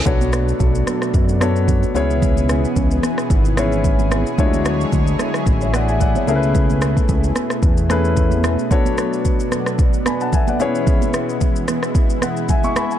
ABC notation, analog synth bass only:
X:1
M:4/4
L:1/8
Q:"Swing 16ths" 1/4=111
K:Bdor
V:1 name="Analog synth bass" clef=bass
B,,,2 B,,, z F,,3 C,,- | C,,2 C,, z G,,,4 | D,,2 D,, z A,,,3 C,,- | C,,2 C,, z E,,4 |
z8 | z8 |]